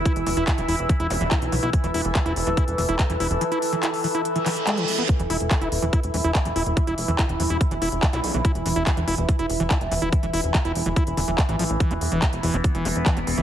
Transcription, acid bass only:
\new Staff \with { instrumentName = "Acid bass" } { \clef bass \time 4/4 \tempo 4 = 143 e'16 r16 e16 e'16 r16 e16 e'16 r16 e16 e'16 r16 e16 e'16 r16 e16 e'16 | r16 e16 e'16 r16 e16 e'16 r16 e16 e'16 r16 e16 e'16 r16 e16 e'16 r16 | e16 e'16 r16 e16 e'16 r16 e16 e'16 r16 e16 e16 r16 gis16 e16 r16 b16 | r16 e16 e'16 r16 e16 e'16 r16 e16 e'16 r16 e16 e'16 r16 e16 e'16 r16 |
e16 e'16 r16 e16 e'16 r16 e16 e'16 r16 e16 e'16 r16 e16 e'16 r16 e16 | e'16 r16 e16 e'16 r16 e16 e'16 r16 e16 e'16 r16 e16 e'16 r16 e16 e'16 | r16 e16 e'16 r16 e16 e'16 r16 e16 e'16 r16 d16 e16 r16 e16 f16 r16 | e16 f'16 r16 e16 f'16 r16 e16 f'16 r16 e16 f'16 r16 e16 f'16 r16 e16 | }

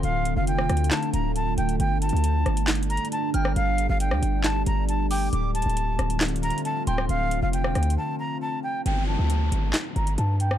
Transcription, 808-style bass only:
\new Staff \with { instrumentName = "808-style bass" } { \clef bass \time 4/4 \key g \minor \tempo 4 = 136 d,,8. f,,8 e,,16 d,8 r8 d,,4 d,,8 | g,,8. d,8. g,,4~ g,,16 r8. g,,8 | g,,8. g,,8 d,16 g,,4 g,,4. | d,,8. d,,8. d,,4~ d,,16 r8. d,,8 |
d,,8. f,,8 e,,16 d,8 r2 | g,,8. d,8. g,,8 r8 g,,8 g,4 | }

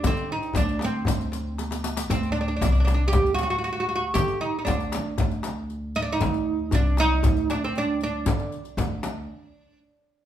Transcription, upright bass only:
\new Staff \with { instrumentName = "Upright bass" } { \clef bass \time 4/4 \tempo 4 = 117 d8 r8 d,4 d,2 | d,4 c,4 d,2 | d8 r8 d,4 d,2 | d,4 c,4 d,2 |
d8 r8 d,4 r2 | }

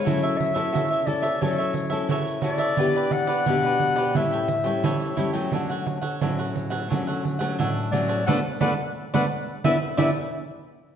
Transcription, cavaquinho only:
\new Staff \with { instrumentName = "Cavaquinho" } { \time 4/4 \key fis \minor \tempo 4 = 88 <fis' a' cis'' e''>16 <a' cis'' e''>16 r16 <a' cis'' e''>16 <fis' a' cis'' e''>16 <a' cis'' e''>8 <a' cis'' e''>16 <fis' a' cis'' e''>16 <a' cis'' e''>16 r16 <a' cis'' e''>16 <fis' a' cis'' e''>8 <fis' a' cis'' e''>16 <a' cis'' e''>16 | <e' g' b' d''>16 <g' b' d''>16 r16 <g' b' d''>16 <e' g' b' d''>16 <g' b' d''>8 <g' b' d''>16 <e' a' cis'' g''>16 <a' cis'' g''>16 r16 <a' cis'' g''>16 <e' a' cis'' g''>8 <e' a' cis'' g''>16 <a' cis'' g''>16 | <d' a' cis'' fis''>16 <a' cis'' fis''>16 r16 <a' cis'' fis''>16 <d' a' cis'' fis''>16 <a' cis'' fis''>8 <a' cis'' fis''>16 <d' a' cis'' fis''>16 <a' cis'' fis''>16 r16 <a' cis'' fis''>16 <d' a' cis'' fis''>8 <d' a' cis'' fis''>16 <a' cis'' fis''>16 | <a' b' d''>16 r16 <a' b' d''>16 r8 <a' b' d''>16 r8 <b' d'' e''>16 r16 <b' d'' e''>16 r4 r16 | }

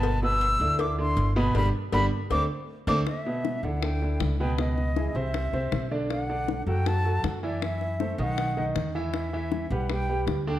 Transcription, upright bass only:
\new Staff \with { instrumentName = "Upright bass" } { \clef bass \time 4/4 \key g \major \tempo 4 = 158 g,,4. d,4. g,,4 | g,,8 r8 g,,8 r8 d,8 r4 d,8 | r4. d,4. cis,4~ | cis,4. c,4 c,8 b,,4~ |
b,,4. fis,4. fis,4~ | fis,4. b,,4. e,4~ | e,4. b,,4. d,4 | }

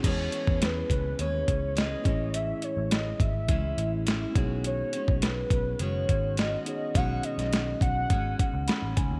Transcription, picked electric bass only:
\new Staff \with { instrumentName = "Picked electric bass" } { \clef bass \time 4/4 \key b \mixolydian \tempo 4 = 104 e,8 r16 e,8. cis,8 dis,8 cis,4 a,,8~ | a,,8 r16 a,,8. gis,,8 cis,8 a,,4 b,,8~ | b,,8 r16 b,,8. b,,8 fis,,8 gis,,4 r8 | b,,8 r16 b,,8. b,,8 gis,,8 r16 cis,16 r16 a,,16 cis,16 dis,16 | }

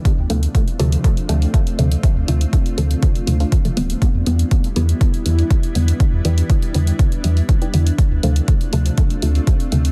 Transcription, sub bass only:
\new Staff \with { instrumentName = "Sub bass" } { \clef bass \time 4/4 \key d \dorian \tempo 4 = 121 r16 d,16 d,16 r8. d,16 r8. d,16 r8. d,16 r16 | r16 d,16 d,16 r8. d,16 r8. d,16 r8. d,,16 r16 | r16 e,16 e,16 r8. e,16 r8. e,16 r8. e,16 r16 | r16 e,16 e,16 r8. e,16 r8. e,16 r8. e,16 r16 |
r16 d,16 d,16 r8. d,16 r8. d,16 r8. d,16 r16 | }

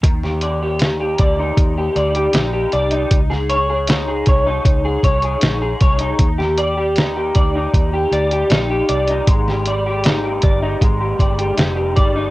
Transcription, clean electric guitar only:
\new Staff \with { instrumentName = "Clean electric guitar" } { \time 4/4 \key ees \major \tempo 4 = 78 ees16 g'16 d''16 g'16 ees'16 g'16 d''16 ees'8 g'16 d''16 g'16 ees'16 g'16 d''16 ees'16 | r16 aes'16 des''16 aes'16 ees'16 aes'16 des''16 ees'8 aes'16 des''16 aes'16 ees'16 aes'16 des''16 ees'16 | r16 g'16 d''16 g'16 ees'16 g'16 d''16 ees'8 g'16 d''16 g'16 ees'16 g'16 d''16 ees'16 | aes16 g'16 d''16 g'16 ees'16 g'16 d''16 ees'16 aes16 g'16 d''16 g'16 ees'16 g'16 d''16 ees'16 | }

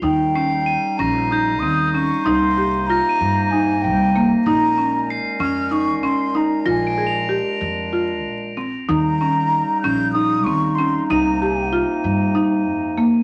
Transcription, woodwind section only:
\new Staff \with { instrumentName = "Woodwind section" } { \clef bass \time 7/8 \key ees \mixolydian \tempo 4 = 95 << { ees'2.~ ees'8~ | ees'2.~ ees'8 | des'2.~ des'8 | d'2.~ d'8 |
ees'2.~ ees'8~ | ees'2.~ ees'8 | } \\ { <des g>2.~ <des g>8 | <c bes>2.~ <c bes>8 | <bes, aes>2.~ <bes, aes>8~ | <bes, aes>2.~ <bes, aes>8 |
<des g>2.~ <des g>8 | <c bes>2.~ <c bes>8 | } >> }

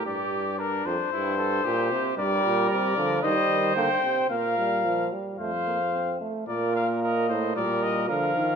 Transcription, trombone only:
\new Staff \with { instrumentName = "Trombone" } { \clef bass \time 4/4 \key bes \major \tempo 4 = 112 r1 | g4. f8 g4 bes8 c'8 | bes8 g8 f8 g8 a8 bes8 c'8 a8 | bes2 g4 f4 | }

